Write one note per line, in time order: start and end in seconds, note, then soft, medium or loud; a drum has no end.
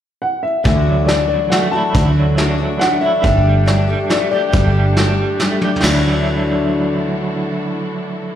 0.22 0.44 F#5 medium
0.43 0.63 E5 medium
0.64 1.35 D2 loud
0.64 1.11 D3 medium
0.64 1.07 E3 medium
0.64 1.09 A3 medium
0.64 1.10 D4 medium
0.64 1.09 F#4 medium
0.64 1.09 E5 medium
0.64 kick loud
0.64 closed hi-hat medium
0.87 1.28 F#3 medium
1.06 1.51 E3 medium
1.06 1.53 A3 medium
1.06 1.53 D4 medium
1.06 1.27 D5 medium
1.06 snare medium
1.06 closed hi-hat medium
1.11 1.53 F#4 medium
1.28 2.15 F#3 medium
1.28 1.49 D5 medium
1.50 1.73 E3 medium
1.50 1.74 A3 medium
1.50 1.74 D4 medium
1.50 1.71 F#5 medium
1.50 snare medium
1.50 closed hi-hat medium
1.55 1.72 F#4 medium
1.71 1.95 D4 soft
1.71 2.81 E4 medium
1.71 1.95 F#4 medium
1.71 2.12 A5 medium
1.76 1.94 A3 soft
1.95 2.65 D2 loud
1.95 2.38 D3 medium
1.95 2.36 E3 medium
1.95 2.38 A3 medium
1.95 2.39 D4 medium
1.95 2.39 F#4 medium
1.95 kick loud
1.95 closed hi-hat medium
2.16 2.58 F#3 medium
2.37 2.59 E3 medium
2.37 2.60 A3 medium
2.37 2.59 D4 medium
2.37 2.57 F#4 medium
2.37 snare medium
2.37 closed hi-hat medium
2.58 3.23 F#3 medium
2.58 2.81 A3 soft
2.58 2.81 D4 soft
2.58 2.80 F#4 medium
2.79 3.02 E3 medium
2.79 3.03 A3 medium
2.79 3.02 D4 medium
2.79 3.00 F#5 medium
2.79 snare medium
2.79 closed hi-hat medium
2.84 3.00 F#4 medium
3.01 3.23 A3 soft
3.01 3.24 D4 soft
3.01 3.24 E4 medium
3.01 3.23 F#4 medium
3.01 3.20 E5 medium
3.22 3.94 G1 loud
3.22 3.65 G3 medium
3.22 3.67 A3 medium
3.22 5.80 A3 medium
3.22 5.80 D4 medium
3.22 3.68 D4 medium
3.22 5.80 G4 medium
3.22 3.68 G4 medium
3.22 5.80 A4 medium
3.22 4.12 E5 medium
3.22 kick loud
3.22 closed hi-hat medium
3.46 3.88 G3 medium
3.66 3.88 G3 medium
3.66 3.89 A3 medium
3.66 3.88 D4 medium
3.66 3.86 G4 medium
3.66 snare medium
3.66 closed hi-hat medium
3.88 4.52 G3 medium
3.88 4.09 A3 soft
3.88 4.10 D4 soft
3.88 4.10 G4 soft
4.09 4.32 G3 medium
4.09 4.32 A3 medium
4.09 4.31 D4 medium
4.09 4.30 G4 medium
4.09 4.29 D5 medium
4.09 snare medium
4.09 closed hi-hat medium
4.31 4.52 A3 soft
4.31 4.53 D4 soft
4.31 4.53 G4 soft
4.31 5.35 D5 medium
4.52 5.24 G1 loud
4.52 4.95 G3 medium
4.52 4.97 A3 medium
4.52 4.97 D4 medium
4.52 4.97 G4 medium
4.52 kick loud
4.52 closed hi-hat medium
4.75 5.17 G3 medium
4.96 5.39 G3 medium
4.96 5.39 A3 medium
4.96 5.40 D4 medium
4.96 5.41 G4 medium
4.96 snare medium
4.96 closed hi-hat medium
5.19 5.82 G3 medium
5.39 5.61 G3 medium
5.39 5.62 A3 medium
5.39 5.62 D4 medium
5.39 5.60 G4 medium
5.39 snare medium
5.39 closed hi-hat medium
5.61 5.85 A3 soft
5.61 5.84 D4 medium
5.61 5.83 G4 medium
5.61 high tom medium
5.76 floor tom medium
5.81 8.35 D2 medium
5.81 8.35 D3 medium
5.81 8.35 E3 medium
5.81 8.35 F#3 loud
5.81 8.35 D4 medium
5.81 8.35 E4 medium
5.81 8.35 F#4 medium
5.81 8.35 A4 medium
5.81 snare loud
5.81 crash medium
5.85 8.35 A3 medium
5.85 8.35 D4 medium
5.85 8.35 E4 medium
5.90 8.35 F#4 medium